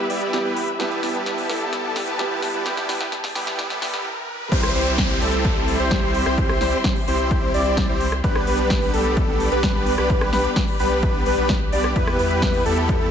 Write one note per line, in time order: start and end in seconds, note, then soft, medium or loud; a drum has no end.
0.00 0.33 E3 medium
0.00 0.33 G3 medium
0.00 0.34 B3 medium
0.00 0.34 G4 medium
0.00 4.01 G4 medium
0.00 4.01 B4 medium
0.00 4.01 E5 medium
0.00 0.76 B5 medium
0.00 riser medium
0.10 0.43 E2 loud
0.10 0.42 G3 medium
0.10 0.42 B3 medium
0.10 0.42 E4 medium
0.10 0.42 G4 medium
0.10 0.42 D5 medium
0.10 open hi-hat loud
0.22 closed hi-hat medium
0.33 0.77 E3 medium
0.33 0.77 G3 medium
0.33 0.77 B3 medium
0.33 0.77 G4 medium
0.33 snare medium
0.33 closed hi-hat medium
0.45 0.77 E2 loud
0.45 0.61 G3 medium
0.45 0.61 B3 medium
0.45 0.61 E4 medium
0.45 0.61 G4 medium
0.45 0.61 B4 medium
0.56 open hi-hat loud
0.68 closed hi-hat medium
0.79 2.16 E3 medium
0.79 2.16 G3 medium
0.79 1.00 G3 medium
0.79 1.00 B3 medium
0.79 2.17 B3 medium
0.79 1.00 E4 medium
0.79 1.00 G4 medium
0.79 2.17 G4 medium
0.79 1.00 B4 loud
0.79 4.02 A5 medium
0.79 snare medium
0.79 closed hi-hat medium
0.91 closed hi-hat soft
1.03 1.47 G3 medium
1.03 1.47 B3 medium
1.03 1.47 E4 medium
1.03 1.47 G4 medium
1.03 1.47 B4 medium
1.03 snare medium
1.03 open hi-hat loud
1.15 closed hi-hat medium
1.26 snare medium
1.26 closed hi-hat medium
1.38 open hi-hat medium
1.49 2.05 G3 medium
1.49 2.05 B3 medium
1.49 2.05 E4 medium
1.49 2.05 G4 medium
1.49 2.05 A4 medium
1.49 snare medium
1.49 open hi-hat loud
1.61 closed hi-hat medium
1.73 snare medium
1.73 closed hi-hat medium
1.96 snare medium
1.96 open hi-hat loud
2.08 2.28 G3 medium
2.08 2.28 B3 medium
2.08 2.28 E4 medium
2.08 2.28 G4 medium
2.08 2.28 B4 loud
2.08 closed hi-hat medium
2.19 2.63 E3 medium
2.19 2.63 G3 medium
2.19 2.63 B3 medium
2.19 2.63 G4 medium
2.19 snare medium
2.19 closed hi-hat medium
2.31 2.51 G3 medium
2.31 2.51 B3 medium
2.31 2.51 E4 medium
2.31 2.51 G4 medium
2.31 2.51 B4 medium
2.42 snare medium
2.42 open hi-hat loud
2.54 2.86 G3 loud
2.54 2.86 B3 medium
2.54 2.86 E4 medium
2.54 2.86 G4 medium
2.54 2.86 B4 loud
2.54 closed hi-hat medium
2.64 4.02 E3 medium
2.64 4.02 G3 medium
2.64 4.03 B3 medium
2.64 4.03 G4 medium
2.64 snare medium
2.64 closed hi-hat medium
2.77 snare medium
2.77 closed hi-hat soft
2.89 3.05 G3 medium
2.89 3.05 B3 medium
2.89 3.05 E4 medium
2.89 3.05 G4 medium
2.89 3.05 B4 loud
2.89 snare loud
2.89 open hi-hat loud
3.01 snare medium
3.12 snare medium
3.12 closed hi-hat medium
3.24 snare medium
3.24 open hi-hat medium
3.35 3.79 G3 medium
3.35 3.79 B3 medium
3.35 3.79 E4 medium
3.35 3.79 G4 medium
3.35 3.79 B4 medium
3.35 snare loud
3.35 open hi-hat loud
3.47 snare medium
3.59 snare loud
3.59 closed hi-hat medium
3.70 snare medium
3.70 closed hi-hat soft
3.82 3.91 E2 loud
3.82 3.91 G3 medium
3.82 3.91 B3 medium
3.82 3.91 E4 medium
3.82 3.91 G4 medium
3.82 3.91 B4 loud
3.82 snare loud
3.82 open hi-hat loud
3.94 4.05 G3 medium
3.94 4.05 B3 medium
3.94 4.05 E4 medium
3.94 4.05 G4 medium
3.94 4.05 B4 medium
3.94 snare medium
4.52 4.73 C2 loud
4.52 4.72 G3 medium
4.52 4.72 C4 medium
4.52 4.72 E4 medium
4.52 8.20 G4 medium
4.52 4.72 G4 medium
4.52 8.20 C5 medium
4.52 4.72 C5 loud
4.52 8.20 E5 medium
4.52 8.20 C6 medium
4.52 kick loud
4.52 closed hi-hat medium
4.52 crash loud
4.52 downlifter medium
4.63 cross-stick medium
4.63 closed hi-hat soft
4.75 5.19 C2 loud
4.75 5.19 G3 medium
4.75 5.19 C4 medium
4.75 5.19 E4 medium
4.75 5.19 G4 medium
4.75 5.19 C5 medium
4.75 open hi-hat loud
4.87 closed hi-hat medium
4.98 kick loud
4.98 snare loud
4.98 closed hi-hat medium
5.10 open hi-hat medium
5.21 5.77 C2 loud
5.21 5.77 G3 medium
5.21 5.77 C4 medium
5.21 5.77 E4 medium
5.21 5.77 G4 medium
5.21 5.77 A4 medium
5.21 open hi-hat loud
5.33 closed hi-hat medium
5.45 kick loud
5.45 closed hi-hat medium
5.68 open hi-hat loud
5.80 6.01 C2 loud
5.80 6.00 G3 medium
5.80 6.00 C4 medium
5.80 6.00 E4 medium
5.80 6.00 G4 medium
5.80 6.00 C5 loud
5.80 closed hi-hat medium
5.91 kick loud
5.91 snare loud
5.91 closed hi-hat medium
6.03 6.24 C2 medium
6.03 6.23 G3 medium
6.03 6.23 C4 medium
6.03 6.23 E4 medium
6.03 6.23 G4 medium
6.03 6.23 C5 medium
6.14 open hi-hat loud
6.26 6.59 C2 loud
6.26 6.58 G3 medium
6.26 6.58 C4 medium
6.26 6.58 E4 medium
6.26 6.58 G4 medium
6.26 6.58 C5 loud
6.26 cross-stick medium
6.26 closed hi-hat medium
6.38 kick loud
6.38 closed hi-hat medium
6.49 cross-stick medium
6.49 closed hi-hat soft
6.61 6.75 C2 loud
6.61 6.78 G3 medium
6.61 6.78 C4 medium
6.61 6.78 E4 medium
6.61 6.78 G4 medium
6.61 6.78 C5 loud
6.61 snare medium
6.61 open hi-hat loud
6.73 closed hi-hat medium
6.84 kick loud
6.84 snare loud
6.84 closed hi-hat medium
6.96 open hi-hat medium
7.08 7.52 C2 loud
7.08 7.51 G3 medium
7.08 7.51 C4 medium
7.08 7.51 E4 medium
7.08 7.51 G4 medium
7.08 7.51 C5 medium
7.08 open hi-hat loud
7.19 closed hi-hat medium
7.31 kick loud
7.31 closed hi-hat medium
7.54 7.87 C2 loud
7.54 7.86 G3 medium
7.54 7.86 C4 medium
7.54 7.86 E4 medium
7.54 7.86 G4 medium
7.54 7.86 D5 medium
7.54 open hi-hat loud
7.66 closed hi-hat medium
7.77 kick loud
7.77 snare loud
7.77 closed hi-hat medium
7.89 8.22 C2 loud
7.89 8.06 G3 medium
7.89 8.06 C4 medium
7.89 8.06 E4 medium
7.89 8.06 G4 medium
7.89 8.06 C5 medium
8.01 open hi-hat loud
8.12 cross-stick medium
8.12 closed hi-hat medium
8.24 8.45 B1 medium
8.24 8.44 G3 medium
8.24 8.45 B3 medium
8.24 8.45 D4 medium
8.24 13.11 G4 medium
8.24 8.45 G4 medium
8.24 8.44 B4 loud
8.24 8.45 B4 loud
8.24 13.11 B4 medium
8.24 11.92 D5 medium
8.24 11.92 B5 medium
8.24 kick loud
8.24 closed hi-hat medium
8.36 cross-stick medium
8.36 closed hi-hat soft
8.47 8.91 B1 loud
8.47 8.91 G3 medium
8.47 8.91 B3 medium
8.47 8.91 D4 medium
8.47 8.91 G4 medium
8.47 8.91 B4 medium
8.47 open hi-hat loud
8.59 closed hi-hat medium
8.70 kick loud
8.70 snare loud
8.70 closed hi-hat medium
8.82 open hi-hat medium
8.94 9.50 B1 loud
8.94 9.49 G3 medium
8.94 9.49 B3 medium
8.94 9.49 D4 medium
8.94 9.49 G4 medium
8.94 9.49 A4 medium
8.94 open hi-hat loud
9.05 closed hi-hat medium
9.17 kick loud
9.17 closed hi-hat medium
9.40 open hi-hat loud
9.52 9.73 B1 loud
9.52 9.72 G3 medium
9.52 9.72 B3 medium
9.52 9.72 D4 medium
9.52 9.72 G4 medium
9.52 9.72 B4 loud
9.52 closed hi-hat medium
9.63 kick loud
9.63 snare loud
9.63 closed hi-hat medium
9.75 9.96 B1 loud
9.75 9.95 G3 medium
9.75 9.95 B3 medium
9.75 9.95 D4 medium
9.75 9.95 G4 medium
9.75 9.95 B4 medium
9.86 open hi-hat loud
9.98 10.31 B1 loud
9.98 10.30 G3 loud
9.98 10.30 B3 medium
9.98 10.30 D4 medium
9.98 10.30 G4 medium
9.98 10.30 B4 loud
9.98 cross-stick medium
9.98 closed hi-hat medium
10.10 kick loud
10.10 closed hi-hat medium
10.21 cross-stick medium
10.21 closed hi-hat soft
10.33 10.47 B1 loud
10.33 10.50 G3 medium
10.33 10.50 B3 medium
10.33 10.50 D4 medium
10.33 10.50 G4 medium
10.33 10.50 B4 loud
10.33 snare medium
10.33 open hi-hat loud
10.45 closed hi-hat medium
10.56 kick loud
10.56 snare loud
10.56 closed hi-hat medium
10.68 open hi-hat medium
10.79 11.24 B1 loud
10.79 11.23 G3 medium
10.79 11.23 B3 medium
10.79 11.23 D4 medium
10.79 11.23 G4 medium
10.79 11.23 B4 medium
10.79 open hi-hat loud
10.91 closed hi-hat medium
11.03 kick loud
11.03 closed hi-hat medium
11.14 closed hi-hat soft
11.26 11.36 B1 loud
11.26 11.35 G3 medium
11.26 11.35 B3 medium
11.26 11.35 D4 medium
11.26 11.35 G4 medium
11.26 11.35 B4 loud
11.26 open hi-hat loud
11.38 11.70 B1 loud
11.38 11.54 G3 medium
11.38 11.54 B3 medium
11.38 11.54 D4 medium
11.38 11.54 G4 medium
11.38 11.54 B4 medium
11.38 closed hi-hat medium
11.49 kick loud
11.49 snare loud
11.49 closed hi-hat medium
11.72 11.94 B1 loud
11.72 11.89 G3 medium
11.72 11.89 B3 medium
11.72 11.89 D4 medium
11.72 11.89 G4 medium
11.72 11.89 D5 medium
11.72 open hi-hat loud
11.84 cross-stick medium
11.84 closed hi-hat medium
11.96 12.17 E2 loud
11.96 12.17 G3 medium
11.96 12.17 B3 medium
11.96 12.17 E4 medium
11.96 12.17 G4 medium
11.96 12.16 B4 loud
11.96 12.17 B4 loud
11.96 13.11 E5 medium
11.96 13.11 B5 medium
11.96 kick loud
11.96 closed hi-hat medium
12.07 cross-stick medium
12.07 closed hi-hat soft
12.19 12.63 E2 loud
12.19 12.63 G3 medium
12.19 12.63 B3 medium
12.19 12.63 E4 medium
12.19 12.63 G4 medium
12.19 12.63 B4 medium
12.19 open hi-hat loud
12.31 closed hi-hat medium
12.42 kick loud
12.42 snare loud
12.42 closed hi-hat medium
12.54 open hi-hat medium
12.66 13.11 E2 loud
12.66 13.11 G3 medium
12.66 13.11 B3 medium
12.66 13.11 E4 medium
12.66 13.11 G4 medium
12.66 13.11 A4 medium
12.66 open hi-hat loud
12.77 closed hi-hat medium
12.89 kick loud
12.89 closed hi-hat medium